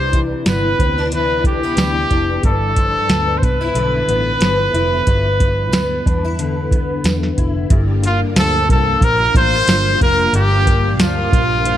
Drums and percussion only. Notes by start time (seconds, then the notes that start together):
0.13 kick, closed hi-hat
0.46 snare, closed hi-hat, tambourine
0.79 kick, closed hi-hat
1.12 closed hi-hat
1.44 kick, closed hi-hat
1.77 snare, closed hi-hat, tambourine
2.11 kick, closed hi-hat
2.43 kick, closed hi-hat
2.76 kick, closed hi-hat
3.09 snare, closed hi-hat, tambourine
3.43 kick, closed hi-hat
3.75 closed hi-hat
4.09 closed hi-hat
4.41 snare, closed hi-hat, tambourine
4.74 closed hi-hat
5.07 kick, closed hi-hat
5.40 kick, closed hi-hat
5.72 snare, closed hi-hat, tambourine
6.06 kick, closed hi-hat
6.39 closed hi-hat
6.71 kick, closed hi-hat
7.04 snare, closed hi-hat, tambourine
7.23 snare
7.38 kick, closed hi-hat
7.70 kick, closed hi-hat
8.04 closed hi-hat
8.36 snare, closed hi-hat, tambourine
8.69 kick, closed hi-hat
9.01 kick, closed hi-hat
9.35 kick, closed hi-hat
9.67 snare, closed hi-hat, tambourine
10.01 kick, closed hi-hat
10.34 closed hi-hat
10.67 kick, closed hi-hat
10.99 snare, closed hi-hat, tambourine
11.33 kick, closed hi-hat
11.66 closed hi-hat